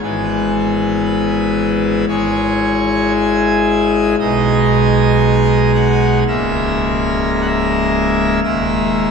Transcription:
0.03 2.05 G#1 medium
0.03 2.05 G#2 medium
0.03 2.05 E3 soft
0.03 2.05 B3 medium
0.03 2.05 G#4 medium
0.03 1.02 B4 loud
1.05 2.05 B4 loud
2.08 4.15 G#1 medium
2.08 4.15 G#2 medium
2.08 4.15 G#3 medium
2.08 4.15 E4 medium
2.08 4.15 G#4 medium
2.08 3.13 C#5 loud
3.16 4.16 G#5 loud
4.20 6.24 B1 medium
4.20 6.24 B2 medium
4.20 6.24 G#3 medium
4.20 6.24 D#4 medium
4.20 6.24 G#4 medium
4.20 5.72 D#5 loud
5.75 6.19 F#5 loud
6.28 8.40 C#1 medium
6.28 8.40 C#2 medium
6.28 8.40 G#3 medium
6.28 8.40 A#3 medium
6.28 8.40 A#4 medium
6.28 7.31 E5 loud
7.34 7.40 E5 loud
7.41 7.47 F#5 medium
7.47 8.40 E5 loud
8.43 9.11 D#1 medium
8.43 9.11 D#2 medium
8.43 9.11 G#3 medium
8.43 9.11 A#3 soft
8.43 9.11 A#4 medium
8.43 9.11 E5 loud

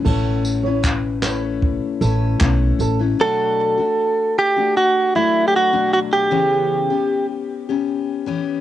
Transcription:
0.04 1.78 A1 medium
0.04 0.65 A3 medium
0.04 0.66 C#4 medium
0.04 0.66 E4 medium
0.04 0.42 A4 medium
0.04 0.64 B4 medium
0.04 kick medium
0.04 crash medium
0.45 tambourine medium
0.63 1.24 E4 medium
0.63 1.24 B4 medium
0.63 0.83 C#5 medium
0.68 1.24 C#4 soft
0.83 1.21 B4 medium
0.83 kick medium
0.83 clap loud
1.22 2.01 A3 medium
1.22 2.01 C#4 medium
1.22 2.02 E4 medium
1.22 1.41 B4 medium
1.22 clap medium
1.22 tambourine medium
1.26 2.03 B4 medium
1.62 kick loud
2.01 2.34 A1 loud
2.01 2.40 A3 medium
2.01 2.41 C#4 medium
2.01 2.42 E4 medium
2.01 2.41 A4 medium
2.01 2.42 B4 medium
2.01 tambourine medium
2.40 2.73 B1 medium
2.40 3.00 A3 medium
2.40 3.00 C#4 medium
2.40 2.99 E4 medium
2.40 2.60 B4 medium
2.40 2.98 B4 medium
2.40 kick loud
2.40 clap loud
2.79 3.12 A1 medium
2.79 2.99 A4 medium
2.79 tambourine medium
2.99 3.20 C#4 soft
2.99 3.19 E4 medium
2.99 3.19 B4 medium
3.19 3.78 B2 medium
3.19 3.78 F#3 medium
3.19 3.78 A3 medium
3.19 3.78 D4 medium
3.19 3.76 F#4 medium
3.19 4.38 A4 loud
3.78 4.57 A3 soft
3.78 4.56 D4 soft
3.78 4.55 F#4 medium
4.39 4.74 G4 loud
4.56 5.15 A3 soft
4.56 5.15 D4 medium
4.56 5.15 F#4 medium
4.77 5.16 F#4 loud
5.15 5.73 F#3 medium
5.15 5.72 A3 medium
5.15 5.72 D4 medium
5.15 5.47 E4 medium
5.15 5.71 F#4 medium
5.48 5.54 G4 medium
5.56 5.92 F#4 medium
5.73 6.30 B2 medium
5.73 6.31 F#3 medium
5.73 6.31 A3 medium
5.73 6.31 D4 medium
5.73 6.31 F#4 medium
5.93 5.99 F#4 medium
6.13 7.26 G4 medium
6.31 6.90 C#3 medium
6.31 6.90 E3 medium
6.31 6.91 B3 medium
6.31 6.90 C#4 medium
6.31 6.89 G4 medium
6.90 7.69 B3 soft
6.90 7.68 C#4 soft
6.90 7.68 G4 medium
7.69 8.26 B3 medium
7.69 8.26 C#4 medium
7.69 8.27 G4 medium
8.26 8.61 E3 medium
8.26 8.61 B3 medium
8.26 8.61 C#4 medium
8.26 8.61 G4 medium

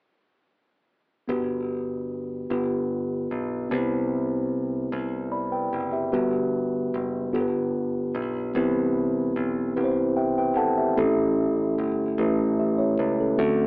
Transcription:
1.28 2.46 G1 medium
1.28 2.46 G2 soft
1.28 2.49 B3 soft
1.28 2.49 D4 soft
1.28 2.50 F#4 soft
1.28 2.50 G4 soft
1.28 2.50 B4 medium
2.50 3.27 G1 medium
2.50 3.67 G2 soft
2.50 3.68 B3 medium
2.50 3.70 D4 soft
2.50 3.71 F4 soft
2.50 3.70 G4 medium
2.50 3.71 B4 medium
3.31 3.68 B1 medium
3.69 4.88 C2 medium
3.69 4.88 C3 medium
3.69 6.08 B3 medium
3.69 6.09 C4 medium
3.69 3.77 D4 soft
3.69 5.29 G4 soft
3.69 5.30 B4 medium
3.78 6.12 E4 medium
4.92 5.69 C2 medium
5.32 5.51 D5 soft
5.32 5.51 B5 soft
5.52 5.91 B4 soft
5.52 5.90 G5 soft
5.73 6.10 F#1 medium
5.92 6.12 G4 soft
5.92 6.31 E5 soft
6.12 6.90 G1 medium
6.12 7.30 G3 medium
6.12 6.87 B3 medium
6.12 6.87 D4 medium
6.12 6.87 F#4 medium
6.12 6.88 G4 medium
6.12 6.88 B4 medium
6.94 7.31 F#1 medium
7.33 8.11 G1 medium
7.33 8.51 G2 medium
7.33 8.08 B3 medium
7.33 8.08 D4 medium
7.33 8.08 F4 medium
7.33 8.09 G4 soft
7.33 7.40 A4 medium
7.41 8.12 B4 medium
8.15 8.52 B1 medium
8.54 9.32 C2 medium
8.54 9.72 E3 medium
8.54 9.29 B3 medium
8.54 9.30 C4 medium
8.54 9.30 E4 medium
8.54 9.30 G4 medium
8.54 9.30 B4 medium
9.36 9.73 B1 medium
9.76 10.57 C2 medium
9.76 10.51 C4 medium
9.76 10.51 E4 medium
9.76 10.16 G4 medium
9.76 9.83 B4 medium
9.84 10.20 C5 medium
10.17 10.36 G4 soft
10.17 10.36 E5 soft
10.17 10.37 G5 medium
10.38 10.57 B4 soft
10.38 10.56 G5 medium
10.57 10.94 G#1 medium
10.57 10.76 A4 soft
10.57 10.76 F#5 medium
10.57 10.94 A5 medium
10.78 10.96 G4 soft
10.78 11.16 E5 soft
10.96 11.74 A1 medium
10.96 12.14 A2 medium
10.96 11.71 A3 medium
10.96 11.03 C4 soft
10.96 11.72 E4 medium
10.96 11.72 G4 medium
10.96 11.72 A4 medium
11.03 11.75 C#4 medium
11.78 12.15 G1 medium
12.18 12.95 A1 medium
12.18 12.93 A3 medium
12.18 12.59 C#4 soft
12.18 12.59 E4 medium
12.18 12.58 G4 soft
12.18 12.60 B4 medium
12.59 12.78 G4 soft
12.59 12.78 E5 soft
12.78 12.98 E4 soft
12.78 12.98 C#5 soft
12.99 13.36 C#2 medium
12.99 13.18 B4 medium
13.20 13.58 C#4 soft
13.20 13.37 A4 soft
13.37 13.67 D2 medium
13.37 13.67 D3 medium
13.37 13.67 A3 medium
13.37 13.67 C4 medium
13.37 13.67 D4 medium
13.37 13.67 F#4 medium
13.37 13.67 A4 medium

